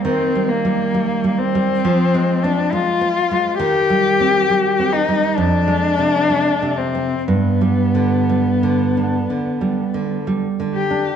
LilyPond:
<<
  \new Staff \with { instrumentName = "Cello" } { \time 4/4 \key g \phrygian \tempo 4 = 66 c'8 bes4 c'8~ \tuplet 3/2 { c'4 d'8 } f'4 | g'4. ees'8 d'4. c'8 | b2. r8 g'8 | }
  \new Staff \with { instrumentName = "Nylon-string guitar" } { \clef bass \time 4/4 \key g \phrygian \tuplet 3/2 { ees8 g8 g8 g8 g8 g8 f8 aes8 c'8 aes8 c'8 aes8 } | \tuplet 3/2 { ees8 g8 c'8 g8 c'8 g8 f,8 aes8 c8 aes8 c8 c'8 } | \tuplet 3/2 { g,8 g8 d8 g8 d8 d'8 d8 g8 d8 g8 d8 d'8 } | }
>>